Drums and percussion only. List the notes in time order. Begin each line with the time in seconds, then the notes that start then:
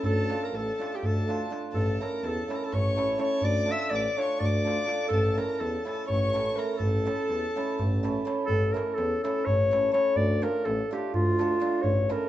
0.03 darbuka dum
0.30 darbuka tek
0.54 darbuka tek
0.82 darbuka tek
1.03 darbuka dum
1.17 darbuka tek
1.30 darbuka tek
1.52 darbuka tek
1.63 darbuka tek
1.74 darbuka dum
2.02 darbuka tek
2.24 darbuka tek
2.38 darbuka tek
2.51 darbuka tek
2.73 darbuka dum
2.86 darbuka tek
2.98 darbuka tek
3.20 darbuka tek
3.41 darbuka dum
3.69 darbuka tek
3.91 darbuka tek
4.19 darbuka tek
4.41 darbuka dum
4.55 darbuka tek
4.67 darbuka tek
4.88 darbuka tek
5.11 darbuka dum
5.38 darbuka tek
5.60 darbuka tek
5.74 darbuka tek
5.87 darbuka tek
6.10 darbuka dum
6.22 darbuka tek
6.36 darbuka tek
6.58 darbuka tek
6.80 darbuka dum
7.07 darbuka tek
7.30 darbuka tek
7.45 darbuka tek
7.57 darbuka tek
7.69 darbuka tek
7.79 darbuka dum
8.05 darbuka tek
8.17 darbuka tek
8.27 darbuka tek
8.39 darbuka tek
8.49 darbuka dum
8.77 darbuka tek
8.98 darbuka tek
9.12 darbuka tek
9.25 darbuka tek
9.47 darbuka dum
9.60 darbuka tek
9.73 darbuka tek
9.95 darbuka tek
10.16 darbuka dum
10.43 darbuka tek
10.65 darbuka tek
10.79 darbuka tek
10.93 darbuka tek
11.14 darbuka dum
11.27 darbuka tek
11.39 darbuka tek
11.62 darbuka tek
11.84 darbuka dum
12.10 darbuka tek